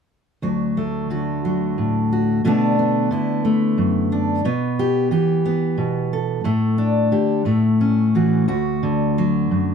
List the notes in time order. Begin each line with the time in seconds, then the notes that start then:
0.42 D2 F#3
0.77 A3
1.10 D3 F#4
1.45 F#3
1.78 A2
2.12 F#4
2.45 B2 D3 A3 B3 D4
2.79 B3
3.11 D3 E4
3.45 A3
3.78 F#2
4.12 D4
4.45 B2 B3
4.79 G4
5.11 E3 G4
5.45 B3
5.78 B2
6.13 A4
6.44 A2 A3
6.78 D4
7.12 D3 G4
7.45 A2 A3
7.81 C#4
8.15 E3 F#4
8.48 D2 F#4
8.83 D3
9.18 F#3
9.51 F#2